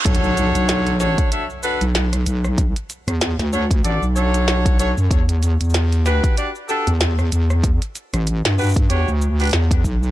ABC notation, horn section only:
X:1
M:4/4
L:1/16
Q:"Swing 16ths" 1/4=95
K:Bm
V:1 name="Horn section"
[DFAc]6 [DFAc]2 [DFAe] z [DFAB] z4 z | z6 [DFAc] z [DFAd] z [DFAc]4 [DFAc] z | z6 [DFGB]2 [DFGd] z [DFGA] z4 z | z6 [DFGB] z [DFGc] z2 [DFGB] z4 |]